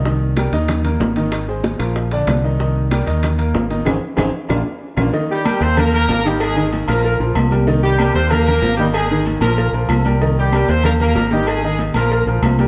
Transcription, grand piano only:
\new Staff \with { instrumentName = "Grand piano" } { \time 4/4 \key c \minor \tempo 4 = 189 <ees ees' ees''>4 <g g' bes'>8 <ees ees' ees''>4 <bes bes'>4 <ees ees' ees''>8~ | <ees ees' ees''>8 <aes aes' c''>4 <f f' bes'>4 <d d' d''>4 <ees ees' ees''>8 | <ees ees' ees''>4 <g g' bes'>8 <ees ees' ees''>4 <bes bes'>4 <ees ees' ees''>8 | <c' ees' aes'>8 r8 <c' ees' aes'>8 r8 <bes d' f'>8 r4 <bes d' f'>8 |
<ees ees' ees''>4 <g g' bes'>8 <bes bes'>4 <bes bes'>4 <ees ees' ees''>8~ | <ees ees' ees''>8 <ees ees' ees''>4 <f f' bes'>4 <f f' bes'>4 <g g' bes'>8 | <ees ees' ees''>4 <g g' bes'>8 <bes bes'>4 <bes bes'>4 <ees ees' ees''>8~ | <ees ees' ees''>8 <ees ees' ees''>4 <f f' bes'>4 <f f' bes'>4 <g g' bes'>8 |
<ees ees' ees''>4 <g g' bes'>8 <bes bes'>4 <bes bes'>4 <ees ees' ees''>8~ | <ees ees' ees''>8 <ees ees' ees''>4 <f f' bes'>4 <f f' bes'>4 <g g' bes'>8 | }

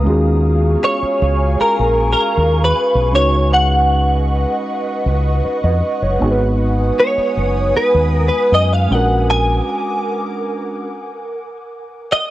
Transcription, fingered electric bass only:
\new Staff \with { instrumentName = "Fingered electric bass" } { \clef bass \time 4/4 \key dis \minor \tempo 4 = 78 dis,4 r8 cis,8 r16 ais,,8 r16 dis,8 r16 b,,16 | cis,4.~ cis,16 r8. cis,8 r16 eis,16 r16 fis,,16 | gis,,4 r8 fis,,8 r16 dis,8 r16 fis,8 ais,,8~ | ais,,8 r2. r8 | }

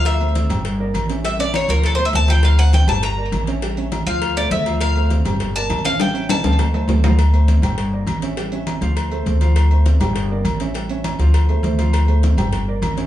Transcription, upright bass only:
\new Staff \with { instrumentName = "Upright bass" } { \clef bass \time 4/4 \key d \minor \tempo 4 = 202 d,4. g,,4. a,,4~ | a,,4. d,4. d,4~ | d,4. g,,4. a,,4~ | a,,4. d,4. d,4~ |
d,4. g,,4. a,,4~ | a,,4. d,4. d,4~ | d,4. g,,4. a,,4~ | a,,4. d,4. d,4~ |
d,4. g,,4. a,,4~ | a,,4. d,4. d,4~ | d,4. g,,4. a,,4 | }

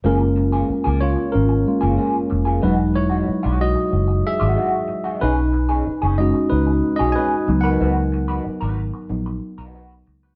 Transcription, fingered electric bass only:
\new Staff \with { instrumentName = "Fingered electric bass" } { \clef bass \time 4/4 \key fis \major \tempo 4 = 93 fis,,4 r16 cis,8 r16 gis,,8 r16 fis,,16 r8 eis,,8 | e,,4 r16 b,,8 r16 fis,,8 r16 gis,,16 r4 | b,,4 r16 fis,,8 r16 cis,8 r16 b,,16 r8 cis,8 | cis,4 r16 gis,,8 r16 ais,,8 r16 b,,8. cis,8 | }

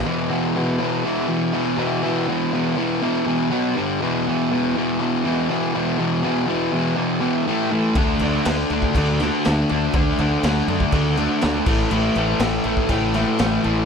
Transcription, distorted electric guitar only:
\new Staff \with { instrumentName = "Distorted electric guitar" } { \clef bass \time 4/4 \key d \lydian \tempo 4 = 121 <e, b, e>8 <e, b, e>8 <e, b, e>8 <e, b, e>8 <e, b, e>8 <e, b, e>8 <e, b, e>8 <e, b, e>8 | <e, b, e>8 <e, b, e>8 <e, b, e>8 <e, b, e>8 <e, b, e>8 <e, b, e>8 <b, fis b>8 <g, d g>8 | <e, b, e>8 <e, b, e>8 <e, b, e>8 <e, b, e>8 <e, b, e>8 <e, b, e>8 <e, b, e>8 <e, b, e>8 | <e, b, e>8 <e, b, e>8 <e, b, e>8 <e, b, e>8 <e, b, e>8 <e, b, e>8 <a, e a>8 <a, e a>8 |
<d a d'>8 <d a d'>8 <d a d'>8 <d a d'>8 <d a d'>8 <d a d'>8 <d a d'>8 <d a d'>8 | <d a d'>8 <d a d'>8 <d a d'>8 <d a d'>8 <d a d'>8 <d a d'>8 <d a d'>8 <a, e a>8 | <a, e a>8 <a, e a>8 <a, e a>8 <a, e a>8 <a, e a>8 <a, e a>8 <a, e a>8 <a, e a>8 | }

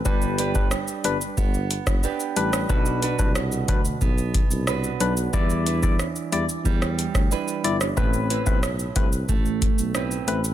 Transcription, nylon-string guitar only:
\new Staff \with { instrumentName = "Nylon-string guitar" } { \time 4/4 \key b \phrygian \tempo 4 = 91 <g b'>8 <d' g' b'>4. b4 <d' g' b'>4 | <b, b'>8 <d' fis' b'>4. b4 <d' fis' b'>4 | <e b'>8 <d' e' b'>4. g4 <d' e' b'>4 | <a, b'>8 <c' e' b'>4. a4 <c' e' b'>4 | }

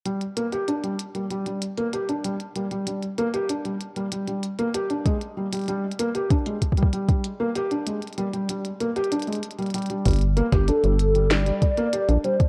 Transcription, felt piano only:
\new Staff \with { instrumentName = "Felt piano" } { \clef bass \time 4/4 \key g \minor \tempo 4 = 96 g16 r16 bes16 g'16 d'16 g16 r16 g16 g16 g16 r16 bes16 g'16 d'16 g16 r16 | g16 g16 g16 r16 bes16 g'16 d'16 g16 r16 g16 g16 g16 r16 bes16 g'16 d'16 | aes16 r16 g16 g16 g16 r16 bes16 g'16 d'16 aes16 r16 g16 g16 g16 r16 bes16 | g'16 d'16 aes16 r16 g16 g16 g16 r16 bes16 g'16 d'16 aes16 r16 g16 g16 g16 |
g16 r16 bes16 g'16 d'16 g16 r16 g16 g16 g16 r16 bes16 g'16 d'16 g16 r16 | }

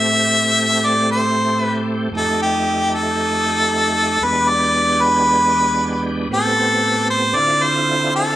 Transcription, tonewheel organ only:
\new Staff \with { instrumentName = "Tonewheel organ" } { \time 4/4 \key a \minor \tempo 4 = 115 <a, a c' g'>1 | <f, a ees' g'>1 | <e, gis b d' g'>1 | <a, b c' g'>2 <d c' e' f'>2 | }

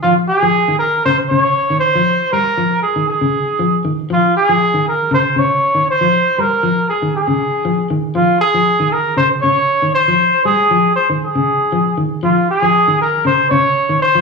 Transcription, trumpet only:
\new Staff \with { instrumentName = "Trumpet" } { \time 4/4 \key des \lydian \tempo 4 = 118 f'8 aes'4 bes'8 c''8 des''4 c''8~ | c''8 bes'4 aes'8 aes'4. r8 | f'8 aes'4 bes'8 c''8 des''4 c''8~ | c''8 bes'4 aes'8 aes'4. r8 |
f'8 aes'4 bes'8 c''8 des''4 c''8~ | c''8 aes'4 c''8 aes'4. r8 | f'8 aes'4 bes'8 c''8 des''4 c''8 | }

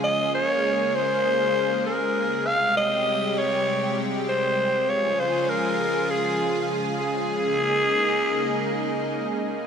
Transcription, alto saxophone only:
\new Staff \with { instrumentName = "Alto saxophone" } { \time 4/4 \key f \minor \tempo 4 = 99 ees''8 des''4 c''4. bes'4 | f''8 ees''4 des''4 r8 c''4 | des''8 c''8 bes'4 aes'4 r8 aes'8~ | aes'2. r4 | }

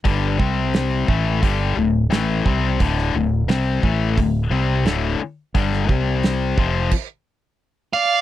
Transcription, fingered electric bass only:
\new Staff \with { instrumentName = "Fingered electric bass" } { \clef bass \time 4/4 \key d \minor \tempo 4 = 87 g,,8 c,4 a,,8 g,,8 d,,8 a,,8 c,8 | d,,8 d,,8 c,8 a,,8 d,,8 c,8 d,,8 r8 | g,,8 c,4 f,,8 r2 | }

